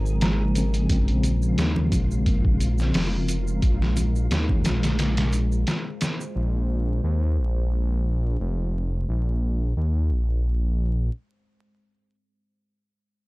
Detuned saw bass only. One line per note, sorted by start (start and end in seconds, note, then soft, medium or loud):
0.00 0.87 G#1 medium
0.90 1.55 A#1 medium
1.58 1.94 D#2 loud
1.92 2.91 A#1 loud
2.94 3.60 F1 loud
3.63 4.28 A#1 loud
4.30 4.66 D#2 loud
4.65 5.64 A#1 loud
6.36 7.01 A#1 loud
7.04 7.39 D#2 loud
7.38 8.37 A#1 medium
8.40 9.05 F1 loud
9.09 9.74 A#1 medium
9.77 10.12 D#2 loud
10.11 11.10 A#1 loud